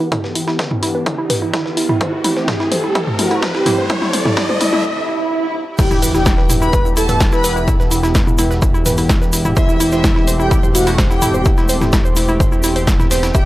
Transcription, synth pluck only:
0.00 0.09 E4 medium
0.12 0.21 E4 loud
0.24 0.32 B4 medium
0.35 0.44 E4 medium
0.48 0.56 E4 loud
0.59 0.68 B4 medium
0.71 0.79 E4 medium
0.83 0.91 E4 loud
0.95 1.03 B4 medium
1.06 1.15 E4 medium
1.18 1.27 E4 loud
1.30 1.39 B4 medium
1.42 1.50 E4 medium
1.53 1.62 E4 loud
1.66 1.74 B4 medium
1.77 1.86 E4 medium
1.89 1.98 E4 loud
2.01 2.09 C5 medium
2.13 2.21 E4 medium
2.24 2.33 E4 loud
2.36 2.45 C5 medium
2.48 2.57 E4 medium
2.60 2.68 E4 loud
2.72 2.80 C5 medium
2.84 2.92 E4 medium
2.95 3.04 E4 loud
3.07 3.16 C5 medium
3.19 3.28 E4 medium
3.31 3.39 E4 loud
3.42 3.51 C5 medium
3.55 3.63 E4 medium
3.66 3.75 E4 loud
3.78 3.87 C5 medium
3.90 3.98 E4 medium
4.02 4.10 E4 loud
4.13 4.22 C5 medium
4.25 4.34 E4 medium
4.37 4.46 E4 loud
4.49 4.57 C5 medium
4.61 4.69 E4 medium
4.73 4.81 E4 loud
5.79 5.87 E4 medium
5.91 5.99 E4 loud
6.02 6.11 B4 medium
6.15 6.23 E4 medium
6.26 6.35 E4 loud
6.38 6.46 B4 medium
6.50 6.58 E4 medium
6.62 6.70 E4 loud
6.73 6.82 B4 medium
6.85 6.94 E4 medium
6.97 7.06 E4 loud
7.09 7.17 B4 medium
7.20 7.29 E4 medium
7.33 7.41 E4 loud
7.44 7.53 B4 medium
7.56 7.64 E4 medium
7.68 7.76 E4 loud
7.80 7.88 B4 medium
7.91 8.00 E4 medium
8.03 8.12 E4 loud
8.15 8.24 B4 medium
8.27 8.35 E4 medium
8.39 8.47 E4 loud
8.51 8.59 B4 medium
8.62 8.71 E4 medium
8.74 8.83 E4 loud
8.86 8.95 B4 medium
8.98 9.06 E4 medium
9.09 9.18 E4 loud
9.22 9.30 B4 medium
9.33 9.42 E4 medium
9.45 9.53 E4 loud
9.57 9.65 C5 medium
9.69 9.77 E4 medium
9.80 9.89 E4 loud
9.92 10.01 C5 medium
10.04 10.13 E4 medium
10.16 10.24 E4 loud
10.27 10.36 C5 medium
10.40 10.48 E4 medium
10.51 10.60 E4 loud
10.63 10.72 C5 medium
10.75 10.83 E4 medium
10.87 10.95 E4 loud
10.98 11.07 C5 medium
11.10 11.19 E4 medium
11.22 11.31 E4 loud
11.34 11.42 C5 medium
11.46 11.54 E4 medium
11.58 11.66 E4 loud
11.69 11.78 C5 medium
11.81 11.90 E4 medium
11.93 12.02 E4 loud
12.05 12.13 C5 medium
12.16 12.25 E4 medium
12.29 12.37 E4 loud
12.40 12.49 C5 medium
12.52 12.61 E4 medium
12.64 12.72 E4 loud
12.76 12.84 C5 medium
12.87 12.96 E4 medium
12.99 13.08 E4 loud
13.11 13.20 C5 medium
13.23 13.31 E4 medium
13.35 13.43 E5 medium

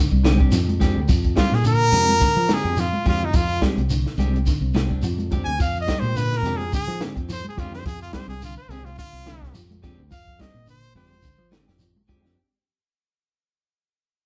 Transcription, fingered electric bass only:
0.11 0.50 C2 medium
0.52 0.94 F2 loud
0.96 1.09 D2 medium
1.09 1.36 F2 loud
1.52 1.91 A#2 medium
1.92 2.20 F2 loud
2.37 2.49 F3 medium
2.49 muted fingered electric bass stroke soft
2.64 2.92 F2 medium
3.06 3.33 F2 medium
3.34 3.61 F2 loud
3.77 4.04 C2 medium
4.18 4.45 C2 loud
4.61 5.00 C2 medium
5.02 5.44 F2 loud
5.46 5.59 D2 medium
5.60 5.87 F2 loud
6.02 6.41 A#2 medium
6.42 6.70 F2 loud
6.88 6.99 F3 medium
7.00 muted fingered electric bass stroke soft
7.16 7.43 F2 medium
7.58 7.84 F2 medium
7.86 8.12 F2 loud
8.28 8.55 C2 medium
8.69 8.96 C2 loud
9.13 9.52 C2 medium
9.54 9.96 F2 loud
9.99 10.11 D2 medium
10.12 10.38 F2 loud
10.54 10.93 A#2 medium
10.95 11.22 F2 loud
11.38 11.51 F3 medium
11.53 muted fingered electric bass stroke soft
11.69 11.95 F2 medium
12.09 12.36 F2 medium

